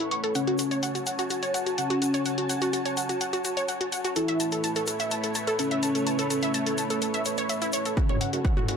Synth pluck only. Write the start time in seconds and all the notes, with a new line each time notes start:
0.11 C#6
0.24 A4
0.35 F#5
0.47 F#4
0.59 F#4
0.71 C#5
0.83 F#5
0.95 F#4
1.07 F#5
1.19 F#4
1.30 F#4
1.43 C#5
1.54 F#5
1.66 F#4
1.78 F#5
1.90 F#4
2.02 F#4
2.14 C#5
2.26 F#5
2.38 F#4
2.49 F#5
2.62 F#4
2.73 F#4
2.86 C#5
2.97 F#5
3.09 F#4
3.21 F#5
3.33 F#4
3.45 F#4
3.57 C#5
3.68 F#5
3.81 F#4
3.92 F#5
4.05 F#4
4.16 A4
4.28 E5
4.40 A5
4.52 A4
4.64 A5
4.76 A4
4.88 A4
5.00 E5
5.11 A5
5.24 A4
5.35 A5
5.47 A4
5.59 A4
5.71 E5
5.83 A5
5.95 A4
6.07 A5
6.19 A4
6.30 A4
6.43 E5
6.54 A5
6.66 A4
6.78 A5
6.90 A4
7.02 A4
7.14 E5
7.26 C#5
7.38 C#5
7.49 E5
7.62 E4
7.73 C#5
7.85 A4
7.97 F#4
8.09 C#5
8.21 F#5
8.33 F#4
8.45 F#5
8.57 F#4
8.68 F#4